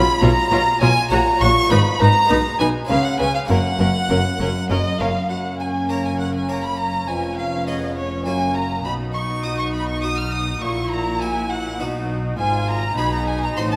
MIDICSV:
0, 0, Header, 1, 8, 480
1, 0, Start_track
1, 0, Key_signature, 6, "major"
1, 0, Tempo, 597610
1, 1370, Time_signature, 3, 2, 24, 8
1, 4738, Tempo, 589971
1, 11135, End_track
2, 0, Start_track
2, 0, Title_t, "Violin"
2, 0, Program_c, 0, 40
2, 0, Note_on_c, 0, 83, 100
2, 176, Note_on_c, 0, 82, 105
2, 188, Note_off_c, 0, 83, 0
2, 647, Note_off_c, 0, 82, 0
2, 652, Note_on_c, 0, 80, 111
2, 883, Note_off_c, 0, 80, 0
2, 888, Note_on_c, 0, 82, 91
2, 1136, Note_on_c, 0, 85, 109
2, 1148, Note_off_c, 0, 82, 0
2, 1366, Note_off_c, 0, 85, 0
2, 1371, Note_on_c, 0, 83, 92
2, 1435, Note_off_c, 0, 83, 0
2, 1613, Note_on_c, 0, 82, 108
2, 2078, Note_off_c, 0, 82, 0
2, 2090, Note_on_c, 0, 80, 90
2, 2154, Note_off_c, 0, 80, 0
2, 2326, Note_on_c, 0, 77, 77
2, 2449, Note_on_c, 0, 78, 80
2, 2461, Note_off_c, 0, 77, 0
2, 2564, Note_off_c, 0, 78, 0
2, 2568, Note_on_c, 0, 80, 85
2, 2685, Note_off_c, 0, 80, 0
2, 2693, Note_on_c, 0, 77, 73
2, 2740, Note_off_c, 0, 77, 0
2, 2811, Note_on_c, 0, 78, 88
2, 3759, Note_off_c, 0, 78, 0
2, 3776, Note_on_c, 0, 75, 73
2, 4020, Note_on_c, 0, 77, 64
2, 4032, Note_off_c, 0, 75, 0
2, 4253, Note_off_c, 0, 77, 0
2, 4258, Note_on_c, 0, 78, 51
2, 4322, Note_off_c, 0, 78, 0
2, 4499, Note_on_c, 0, 80, 57
2, 4563, Note_off_c, 0, 80, 0
2, 4738, Note_on_c, 0, 82, 65
2, 4856, Note_off_c, 0, 82, 0
2, 4863, Note_on_c, 0, 80, 49
2, 4974, Note_off_c, 0, 80, 0
2, 4979, Note_on_c, 0, 78, 55
2, 5097, Note_off_c, 0, 78, 0
2, 5104, Note_on_c, 0, 80, 48
2, 5222, Note_on_c, 0, 82, 53
2, 5234, Note_off_c, 0, 80, 0
2, 5337, Note_off_c, 0, 82, 0
2, 5342, Note_on_c, 0, 83, 56
2, 5460, Note_on_c, 0, 82, 63
2, 5472, Note_off_c, 0, 83, 0
2, 5698, Note_on_c, 0, 80, 55
2, 5710, Note_off_c, 0, 82, 0
2, 5939, Note_off_c, 0, 80, 0
2, 5944, Note_on_c, 0, 77, 58
2, 6177, Note_off_c, 0, 77, 0
2, 6184, Note_on_c, 0, 75, 57
2, 6249, Note_off_c, 0, 75, 0
2, 6423, Note_on_c, 0, 73, 59
2, 6649, Note_off_c, 0, 73, 0
2, 6654, Note_on_c, 0, 80, 63
2, 6899, Note_on_c, 0, 82, 54
2, 6911, Note_off_c, 0, 80, 0
2, 7130, Note_off_c, 0, 82, 0
2, 7135, Note_on_c, 0, 83, 67
2, 7200, Note_off_c, 0, 83, 0
2, 7376, Note_on_c, 0, 85, 72
2, 7618, Note_on_c, 0, 87, 75
2, 7630, Note_off_c, 0, 85, 0
2, 7736, Note_off_c, 0, 87, 0
2, 7741, Note_on_c, 0, 85, 64
2, 7788, Note_off_c, 0, 85, 0
2, 7863, Note_on_c, 0, 83, 61
2, 7979, Note_off_c, 0, 83, 0
2, 7984, Note_on_c, 0, 85, 61
2, 8092, Note_off_c, 0, 85, 0
2, 8097, Note_on_c, 0, 87, 71
2, 8219, Note_on_c, 0, 89, 68
2, 8232, Note_off_c, 0, 87, 0
2, 8336, Note_on_c, 0, 87, 67
2, 8348, Note_off_c, 0, 89, 0
2, 8577, Note_on_c, 0, 85, 71
2, 8589, Note_off_c, 0, 87, 0
2, 8809, Note_off_c, 0, 85, 0
2, 8814, Note_on_c, 0, 82, 70
2, 9053, Note_on_c, 0, 80, 67
2, 9065, Note_off_c, 0, 82, 0
2, 9295, Note_on_c, 0, 78, 67
2, 9307, Note_off_c, 0, 80, 0
2, 9536, Note_off_c, 0, 78, 0
2, 10014, Note_on_c, 0, 80, 70
2, 10256, Note_on_c, 0, 82, 74
2, 10268, Note_off_c, 0, 80, 0
2, 10497, Note_on_c, 0, 83, 75
2, 10509, Note_off_c, 0, 82, 0
2, 10614, Note_on_c, 0, 82, 66
2, 10627, Note_off_c, 0, 83, 0
2, 10739, Note_on_c, 0, 80, 76
2, 10751, Note_off_c, 0, 82, 0
2, 10857, Note_off_c, 0, 80, 0
2, 10862, Note_on_c, 0, 82, 70
2, 10909, Note_off_c, 0, 82, 0
2, 10977, Note_on_c, 0, 84, 63
2, 11025, Note_off_c, 0, 84, 0
2, 11097, Note_on_c, 0, 81, 66
2, 11135, Note_off_c, 0, 81, 0
2, 11135, End_track
3, 0, Start_track
3, 0, Title_t, "Violin section"
3, 0, Program_c, 1, 48
3, 176, Note_on_c, 1, 73, 81
3, 240, Note_off_c, 1, 73, 0
3, 414, Note_on_c, 1, 73, 80
3, 478, Note_off_c, 1, 73, 0
3, 650, Note_on_c, 1, 73, 71
3, 714, Note_off_c, 1, 73, 0
3, 887, Note_on_c, 1, 73, 78
3, 951, Note_off_c, 1, 73, 0
3, 1133, Note_on_c, 1, 73, 71
3, 1197, Note_off_c, 1, 73, 0
3, 1366, Note_on_c, 1, 71, 73
3, 1430, Note_off_c, 1, 71, 0
3, 1608, Note_on_c, 1, 71, 82
3, 1672, Note_off_c, 1, 71, 0
3, 1848, Note_on_c, 1, 71, 71
3, 1913, Note_off_c, 1, 71, 0
3, 2085, Note_on_c, 1, 71, 67
3, 2150, Note_off_c, 1, 71, 0
3, 2327, Note_on_c, 1, 71, 61
3, 2391, Note_off_c, 1, 71, 0
3, 2565, Note_on_c, 1, 71, 68
3, 2629, Note_off_c, 1, 71, 0
3, 2809, Note_on_c, 1, 70, 68
3, 2873, Note_off_c, 1, 70, 0
3, 3052, Note_on_c, 1, 70, 62
3, 3116, Note_off_c, 1, 70, 0
3, 3292, Note_on_c, 1, 70, 63
3, 3356, Note_off_c, 1, 70, 0
3, 3535, Note_on_c, 1, 70, 57
3, 3599, Note_off_c, 1, 70, 0
3, 3776, Note_on_c, 1, 70, 62
3, 3779, Note_on_c, 1, 75, 67
3, 3841, Note_off_c, 1, 70, 0
3, 4003, Note_off_c, 1, 75, 0
3, 4018, Note_on_c, 1, 70, 62
3, 4019, Note_on_c, 1, 77, 57
3, 4083, Note_off_c, 1, 70, 0
3, 4257, Note_on_c, 1, 78, 47
3, 4259, Note_off_c, 1, 77, 0
3, 4492, Note_off_c, 1, 78, 0
3, 4495, Note_on_c, 1, 80, 53
3, 4731, Note_off_c, 1, 80, 0
3, 4740, Note_on_c, 1, 82, 48
3, 4859, Note_off_c, 1, 82, 0
3, 4861, Note_on_c, 1, 80, 49
3, 4974, Note_on_c, 1, 78, 39
3, 4980, Note_off_c, 1, 80, 0
3, 5023, Note_off_c, 1, 78, 0
3, 5099, Note_on_c, 1, 80, 47
3, 5216, Note_off_c, 1, 80, 0
3, 5220, Note_on_c, 1, 82, 51
3, 5339, Note_on_c, 1, 83, 48
3, 5340, Note_off_c, 1, 82, 0
3, 5459, Note_off_c, 1, 83, 0
3, 5459, Note_on_c, 1, 82, 55
3, 5695, Note_off_c, 1, 82, 0
3, 5702, Note_on_c, 1, 80, 49
3, 5941, Note_off_c, 1, 80, 0
3, 5941, Note_on_c, 1, 77, 57
3, 6180, Note_off_c, 1, 77, 0
3, 6180, Note_on_c, 1, 75, 51
3, 6415, Note_off_c, 1, 75, 0
3, 6417, Note_on_c, 1, 73, 44
3, 6653, Note_off_c, 1, 73, 0
3, 6656, Note_on_c, 1, 80, 47
3, 6892, Note_off_c, 1, 80, 0
3, 6897, Note_on_c, 1, 82, 48
3, 7137, Note_off_c, 1, 82, 0
3, 7139, Note_on_c, 1, 83, 56
3, 7204, Note_off_c, 1, 83, 0
3, 7375, Note_on_c, 1, 85, 54
3, 7440, Note_off_c, 1, 85, 0
3, 7617, Note_on_c, 1, 87, 59
3, 7735, Note_off_c, 1, 87, 0
3, 7742, Note_on_c, 1, 85, 59
3, 7858, Note_off_c, 1, 85, 0
3, 7864, Note_on_c, 1, 83, 54
3, 7979, Note_off_c, 1, 83, 0
3, 7982, Note_on_c, 1, 85, 57
3, 8099, Note_off_c, 1, 85, 0
3, 8103, Note_on_c, 1, 87, 60
3, 8219, Note_on_c, 1, 89, 56
3, 8222, Note_off_c, 1, 87, 0
3, 8339, Note_off_c, 1, 89, 0
3, 8340, Note_on_c, 1, 87, 62
3, 8575, Note_off_c, 1, 87, 0
3, 8582, Note_on_c, 1, 85, 62
3, 8816, Note_off_c, 1, 85, 0
3, 8817, Note_on_c, 1, 82, 61
3, 9053, Note_on_c, 1, 80, 65
3, 9058, Note_off_c, 1, 82, 0
3, 9295, Note_on_c, 1, 78, 53
3, 9296, Note_off_c, 1, 80, 0
3, 9536, Note_off_c, 1, 78, 0
3, 10011, Note_on_c, 1, 80, 64
3, 10237, Note_off_c, 1, 80, 0
3, 10257, Note_on_c, 1, 82, 72
3, 10496, Note_off_c, 1, 82, 0
3, 10500, Note_on_c, 1, 83, 64
3, 10615, Note_off_c, 1, 83, 0
3, 10619, Note_on_c, 1, 82, 63
3, 10735, Note_off_c, 1, 82, 0
3, 10736, Note_on_c, 1, 80, 54
3, 10853, Note_off_c, 1, 80, 0
3, 10854, Note_on_c, 1, 82, 60
3, 10974, Note_on_c, 1, 84, 63
3, 10975, Note_off_c, 1, 82, 0
3, 11095, Note_off_c, 1, 84, 0
3, 11098, Note_on_c, 1, 81, 60
3, 11135, Note_off_c, 1, 81, 0
3, 11135, End_track
4, 0, Start_track
4, 0, Title_t, "Violin section"
4, 0, Program_c, 2, 48
4, 0, Note_on_c, 2, 83, 114
4, 170, Note_off_c, 2, 83, 0
4, 177, Note_on_c, 2, 82, 127
4, 654, Note_off_c, 2, 82, 0
4, 655, Note_on_c, 2, 80, 112
4, 890, Note_on_c, 2, 82, 109
4, 894, Note_off_c, 2, 80, 0
4, 955, Note_off_c, 2, 82, 0
4, 1133, Note_on_c, 2, 85, 111
4, 1367, Note_off_c, 2, 85, 0
4, 1371, Note_on_c, 2, 83, 118
4, 1605, Note_off_c, 2, 83, 0
4, 1606, Note_on_c, 2, 82, 127
4, 2080, Note_on_c, 2, 80, 95
4, 2084, Note_off_c, 2, 82, 0
4, 2144, Note_off_c, 2, 80, 0
4, 2321, Note_on_c, 2, 77, 108
4, 2441, Note_off_c, 2, 77, 0
4, 2449, Note_on_c, 2, 78, 91
4, 2562, Note_on_c, 2, 80, 101
4, 2568, Note_off_c, 2, 78, 0
4, 2685, Note_off_c, 2, 80, 0
4, 2686, Note_on_c, 2, 77, 98
4, 2806, Note_on_c, 2, 78, 108
4, 2807, Note_off_c, 2, 77, 0
4, 3756, Note_off_c, 2, 78, 0
4, 4258, Note_on_c, 2, 70, 44
4, 5667, Note_off_c, 2, 70, 0
4, 5698, Note_on_c, 2, 71, 48
4, 6639, Note_off_c, 2, 71, 0
4, 6658, Note_on_c, 2, 70, 40
4, 7135, Note_on_c, 2, 66, 50
4, 7137, Note_off_c, 2, 70, 0
4, 9983, Note_off_c, 2, 66, 0
4, 10019, Note_on_c, 2, 68, 50
4, 10464, Note_off_c, 2, 68, 0
4, 10495, Note_on_c, 2, 68, 52
4, 10965, Note_off_c, 2, 68, 0
4, 10975, Note_on_c, 2, 66, 60
4, 11135, Note_off_c, 2, 66, 0
4, 11135, End_track
5, 0, Start_track
5, 0, Title_t, "Viola section"
5, 0, Program_c, 3, 48
5, 175, Note_on_c, 3, 65, 75
5, 239, Note_off_c, 3, 65, 0
5, 416, Note_on_c, 3, 65, 83
5, 481, Note_off_c, 3, 65, 0
5, 653, Note_on_c, 3, 65, 74
5, 718, Note_off_c, 3, 65, 0
5, 894, Note_on_c, 3, 66, 78
5, 958, Note_off_c, 3, 66, 0
5, 1136, Note_on_c, 3, 66, 75
5, 1200, Note_off_c, 3, 66, 0
5, 1372, Note_on_c, 3, 63, 84
5, 1436, Note_off_c, 3, 63, 0
5, 1611, Note_on_c, 3, 63, 69
5, 1676, Note_off_c, 3, 63, 0
5, 1847, Note_on_c, 3, 63, 82
5, 1911, Note_off_c, 3, 63, 0
5, 2088, Note_on_c, 3, 63, 65
5, 2153, Note_off_c, 3, 63, 0
5, 2327, Note_on_c, 3, 61, 64
5, 2391, Note_off_c, 3, 61, 0
5, 2567, Note_on_c, 3, 61, 62
5, 2631, Note_off_c, 3, 61, 0
5, 2806, Note_on_c, 3, 61, 66
5, 2870, Note_off_c, 3, 61, 0
5, 3050, Note_on_c, 3, 61, 55
5, 3114, Note_off_c, 3, 61, 0
5, 3295, Note_on_c, 3, 61, 63
5, 3359, Note_off_c, 3, 61, 0
5, 3535, Note_on_c, 3, 61, 59
5, 3599, Note_off_c, 3, 61, 0
5, 3776, Note_on_c, 3, 61, 59
5, 3840, Note_off_c, 3, 61, 0
5, 4018, Note_on_c, 3, 61, 64
5, 4082, Note_off_c, 3, 61, 0
5, 4256, Note_on_c, 3, 61, 41
5, 7104, Note_off_c, 3, 61, 0
5, 7137, Note_on_c, 3, 63, 51
5, 8579, Note_off_c, 3, 63, 0
5, 8580, Note_on_c, 3, 64, 51
5, 9538, Note_off_c, 3, 64, 0
5, 9539, Note_on_c, 3, 63, 49
5, 10016, Note_on_c, 3, 65, 53
5, 10017, Note_off_c, 3, 63, 0
5, 10463, Note_off_c, 3, 65, 0
5, 10495, Note_on_c, 3, 63, 57
5, 11135, Note_off_c, 3, 63, 0
5, 11135, End_track
6, 0, Start_track
6, 0, Title_t, "Harpsichord"
6, 0, Program_c, 4, 6
6, 0, Note_on_c, 4, 47, 72
6, 0, Note_on_c, 4, 56, 68
6, 0, Note_on_c, 4, 65, 64
6, 0, Note_on_c, 4, 73, 61
6, 155, Note_off_c, 4, 47, 0
6, 176, Note_on_c, 4, 47, 71
6, 391, Note_off_c, 4, 47, 0
6, 413, Note_on_c, 4, 47, 76
6, 629, Note_off_c, 4, 47, 0
6, 655, Note_on_c, 4, 47, 70
6, 847, Note_off_c, 4, 56, 0
6, 853, Note_off_c, 4, 65, 0
6, 860, Note_off_c, 4, 73, 0
6, 870, Note_off_c, 4, 47, 0
6, 874, Note_on_c, 4, 66, 66
6, 885, Note_on_c, 4, 73, 73
6, 897, Note_on_c, 4, 46, 79
6, 1110, Note_off_c, 4, 46, 0
6, 1131, Note_on_c, 4, 46, 72
6, 1331, Note_on_c, 4, 56, 57
6, 1342, Note_on_c, 4, 63, 59
6, 1346, Note_off_c, 4, 46, 0
6, 1346, Note_off_c, 4, 66, 0
6, 1352, Note_off_c, 4, 73, 0
6, 1357, Note_on_c, 4, 71, 63
6, 1367, Note_on_c, 4, 44, 72
6, 1583, Note_off_c, 4, 44, 0
6, 1610, Note_on_c, 4, 44, 65
6, 1804, Note_off_c, 4, 56, 0
6, 1814, Note_on_c, 4, 56, 62
6, 1816, Note_off_c, 4, 63, 0
6, 1824, Note_off_c, 4, 44, 0
6, 1826, Note_off_c, 4, 71, 0
6, 1826, Note_on_c, 4, 63, 68
6, 1839, Note_on_c, 4, 71, 66
6, 1851, Note_on_c, 4, 47, 63
6, 2064, Note_off_c, 4, 47, 0
6, 2089, Note_on_c, 4, 47, 65
6, 2279, Note_off_c, 4, 56, 0
6, 2289, Note_on_c, 4, 56, 62
6, 2300, Note_off_c, 4, 63, 0
6, 2302, Note_on_c, 4, 61, 62
6, 2303, Note_off_c, 4, 47, 0
6, 2307, Note_off_c, 4, 71, 0
6, 2315, Note_on_c, 4, 71, 61
6, 2328, Note_on_c, 4, 49, 71
6, 2543, Note_off_c, 4, 49, 0
6, 2569, Note_on_c, 4, 49, 65
6, 2772, Note_on_c, 4, 58, 55
6, 2774, Note_off_c, 4, 56, 0
6, 2774, Note_off_c, 4, 61, 0
6, 2784, Note_on_c, 4, 61, 58
6, 2785, Note_off_c, 4, 49, 0
6, 2788, Note_off_c, 4, 71, 0
6, 2795, Note_on_c, 4, 70, 51
6, 2808, Note_on_c, 4, 42, 59
6, 3026, Note_off_c, 4, 42, 0
6, 3048, Note_on_c, 4, 42, 55
6, 3267, Note_off_c, 4, 42, 0
6, 3287, Note_on_c, 4, 42, 70
6, 3507, Note_off_c, 4, 42, 0
6, 3532, Note_on_c, 4, 42, 57
6, 3751, Note_off_c, 4, 42, 0
6, 3774, Note_on_c, 4, 42, 60
6, 3992, Note_off_c, 4, 42, 0
6, 4016, Note_on_c, 4, 42, 61
6, 4208, Note_off_c, 4, 58, 0
6, 4214, Note_off_c, 4, 61, 0
6, 4220, Note_off_c, 4, 70, 0
6, 4233, Note_off_c, 4, 42, 0
6, 4254, Note_on_c, 4, 42, 36
6, 4734, Note_on_c, 4, 58, 30
6, 4739, Note_on_c, 4, 61, 27
6, 4741, Note_on_c, 4, 70, 34
6, 5082, Note_off_c, 4, 58, 0
6, 5085, Note_off_c, 4, 61, 0
6, 5087, Note_off_c, 4, 70, 0
6, 5217, Note_on_c, 4, 58, 33
6, 5221, Note_on_c, 4, 61, 29
6, 5223, Note_on_c, 4, 70, 33
6, 5564, Note_off_c, 4, 58, 0
6, 5566, Note_off_c, 4, 61, 0
6, 5568, Note_off_c, 4, 70, 0
6, 5664, Note_off_c, 4, 42, 0
6, 5699, Note_on_c, 4, 41, 37
6, 6181, Note_on_c, 4, 59, 31
6, 6184, Note_on_c, 4, 61, 31
6, 6187, Note_on_c, 4, 68, 35
6, 6526, Note_off_c, 4, 59, 0
6, 6528, Note_off_c, 4, 61, 0
6, 6530, Note_off_c, 4, 68, 0
6, 6626, Note_off_c, 4, 41, 0
6, 6658, Note_on_c, 4, 42, 42
6, 6658, Note_on_c, 4, 58, 32
6, 6665, Note_on_c, 4, 61, 30
6, 6670, Note_on_c, 4, 66, 32
6, 7105, Note_off_c, 4, 42, 0
6, 7105, Note_off_c, 4, 58, 0
6, 7108, Note_off_c, 4, 61, 0
6, 7111, Note_off_c, 4, 66, 0
6, 7141, Note_on_c, 4, 47, 38
6, 7621, Note_on_c, 4, 63, 33
6, 7627, Note_on_c, 4, 66, 38
6, 7967, Note_off_c, 4, 63, 0
6, 7971, Note_off_c, 4, 66, 0
6, 8104, Note_on_c, 4, 63, 35
6, 8107, Note_on_c, 4, 66, 38
6, 8448, Note_off_c, 4, 63, 0
6, 8449, Note_off_c, 4, 66, 0
6, 8548, Note_off_c, 4, 47, 0
6, 8579, Note_on_c, 4, 46, 43
6, 9064, Note_on_c, 4, 64, 37
6, 9069, Note_on_c, 4, 66, 42
6, 9407, Note_off_c, 4, 64, 0
6, 9410, Note_off_c, 4, 66, 0
6, 9505, Note_off_c, 4, 46, 0
6, 9540, Note_on_c, 4, 47, 47
6, 9541, Note_on_c, 4, 59, 37
6, 9544, Note_on_c, 4, 63, 33
6, 9549, Note_on_c, 4, 66, 36
6, 9985, Note_off_c, 4, 47, 0
6, 9986, Note_off_c, 4, 59, 0
6, 9987, Note_off_c, 4, 63, 0
6, 9990, Note_off_c, 4, 66, 0
6, 10020, Note_on_c, 4, 44, 38
6, 10465, Note_off_c, 4, 44, 0
6, 10497, Note_on_c, 4, 47, 51
6, 10497, Note_on_c, 4, 59, 36
6, 10501, Note_on_c, 4, 63, 37
6, 10505, Note_on_c, 4, 68, 39
6, 10842, Note_off_c, 4, 59, 0
6, 10845, Note_off_c, 4, 63, 0
6, 10847, Note_off_c, 4, 68, 0
6, 10944, Note_off_c, 4, 47, 0
6, 10978, Note_on_c, 4, 60, 36
6, 10979, Note_on_c, 4, 45, 51
6, 10981, Note_on_c, 4, 63, 39
6, 10988, Note_on_c, 4, 66, 39
6, 11135, Note_off_c, 4, 45, 0
6, 11135, Note_off_c, 4, 60, 0
6, 11135, Note_off_c, 4, 63, 0
6, 11135, Note_off_c, 4, 66, 0
6, 11135, End_track
7, 0, Start_track
7, 0, Title_t, "Cello section"
7, 0, Program_c, 5, 48
7, 174, Note_on_c, 5, 47, 95
7, 238, Note_off_c, 5, 47, 0
7, 413, Note_on_c, 5, 47, 84
7, 477, Note_off_c, 5, 47, 0
7, 651, Note_on_c, 5, 47, 89
7, 715, Note_off_c, 5, 47, 0
7, 893, Note_on_c, 5, 46, 83
7, 957, Note_off_c, 5, 46, 0
7, 1130, Note_on_c, 5, 46, 80
7, 1194, Note_off_c, 5, 46, 0
7, 1370, Note_on_c, 5, 44, 97
7, 1435, Note_off_c, 5, 44, 0
7, 1611, Note_on_c, 5, 44, 90
7, 1675, Note_off_c, 5, 44, 0
7, 1847, Note_on_c, 5, 47, 76
7, 1911, Note_off_c, 5, 47, 0
7, 2088, Note_on_c, 5, 47, 75
7, 2152, Note_off_c, 5, 47, 0
7, 2327, Note_on_c, 5, 49, 72
7, 2392, Note_off_c, 5, 49, 0
7, 2565, Note_on_c, 5, 49, 68
7, 2629, Note_off_c, 5, 49, 0
7, 2808, Note_on_c, 5, 42, 84
7, 2872, Note_off_c, 5, 42, 0
7, 3046, Note_on_c, 5, 42, 75
7, 3110, Note_off_c, 5, 42, 0
7, 3289, Note_on_c, 5, 42, 71
7, 3353, Note_off_c, 5, 42, 0
7, 3530, Note_on_c, 5, 42, 68
7, 3595, Note_off_c, 5, 42, 0
7, 3771, Note_on_c, 5, 42, 69
7, 3836, Note_off_c, 5, 42, 0
7, 4014, Note_on_c, 5, 42, 68
7, 4078, Note_off_c, 5, 42, 0
7, 4254, Note_on_c, 5, 42, 46
7, 5665, Note_off_c, 5, 42, 0
7, 5697, Note_on_c, 5, 41, 47
7, 6639, Note_off_c, 5, 41, 0
7, 6660, Note_on_c, 5, 42, 47
7, 7135, Note_on_c, 5, 47, 51
7, 7138, Note_off_c, 5, 42, 0
7, 8549, Note_off_c, 5, 47, 0
7, 8579, Note_on_c, 5, 46, 54
7, 9518, Note_off_c, 5, 46, 0
7, 9537, Note_on_c, 5, 47, 48
7, 10016, Note_off_c, 5, 47, 0
7, 10018, Note_on_c, 5, 44, 61
7, 10464, Note_off_c, 5, 44, 0
7, 10497, Note_on_c, 5, 47, 58
7, 10966, Note_off_c, 5, 47, 0
7, 10978, Note_on_c, 5, 45, 53
7, 11135, Note_off_c, 5, 45, 0
7, 11135, End_track
8, 0, Start_track
8, 0, Title_t, "Double bass section"
8, 0, Program_c, 6, 48
8, 176, Note_on_c, 6, 35, 97
8, 240, Note_off_c, 6, 35, 0
8, 415, Note_on_c, 6, 35, 81
8, 479, Note_off_c, 6, 35, 0
8, 654, Note_on_c, 6, 35, 74
8, 718, Note_off_c, 6, 35, 0
8, 894, Note_on_c, 6, 34, 79
8, 959, Note_off_c, 6, 34, 0
8, 1131, Note_on_c, 6, 34, 83
8, 1196, Note_off_c, 6, 34, 0
8, 1370, Note_on_c, 6, 32, 93
8, 1435, Note_off_c, 6, 32, 0
8, 1607, Note_on_c, 6, 32, 85
8, 1671, Note_off_c, 6, 32, 0
8, 1847, Note_on_c, 6, 35, 70
8, 1911, Note_off_c, 6, 35, 0
8, 2086, Note_on_c, 6, 35, 75
8, 2150, Note_off_c, 6, 35, 0
8, 2324, Note_on_c, 6, 37, 77
8, 2388, Note_off_c, 6, 37, 0
8, 2563, Note_on_c, 6, 37, 67
8, 2627, Note_off_c, 6, 37, 0
8, 2805, Note_on_c, 6, 30, 83
8, 2870, Note_off_c, 6, 30, 0
8, 3049, Note_on_c, 6, 30, 79
8, 3114, Note_off_c, 6, 30, 0
8, 3291, Note_on_c, 6, 30, 68
8, 3355, Note_off_c, 6, 30, 0
8, 3534, Note_on_c, 6, 30, 69
8, 3598, Note_off_c, 6, 30, 0
8, 3778, Note_on_c, 6, 30, 71
8, 3843, Note_off_c, 6, 30, 0
8, 4016, Note_on_c, 6, 30, 64
8, 4080, Note_off_c, 6, 30, 0
8, 4256, Note_on_c, 6, 30, 42
8, 5665, Note_off_c, 6, 30, 0
8, 5697, Note_on_c, 6, 29, 48
8, 6639, Note_off_c, 6, 29, 0
8, 6659, Note_on_c, 6, 30, 44
8, 7138, Note_off_c, 6, 30, 0
8, 7138, Note_on_c, 6, 35, 47
8, 8550, Note_off_c, 6, 35, 0
8, 8580, Note_on_c, 6, 34, 56
8, 9519, Note_off_c, 6, 34, 0
8, 9538, Note_on_c, 6, 35, 53
8, 10014, Note_on_c, 6, 32, 60
8, 10017, Note_off_c, 6, 35, 0
8, 10462, Note_off_c, 6, 32, 0
8, 10495, Note_on_c, 6, 35, 49
8, 10965, Note_off_c, 6, 35, 0
8, 10976, Note_on_c, 6, 33, 53
8, 11135, Note_off_c, 6, 33, 0
8, 11135, End_track
0, 0, End_of_file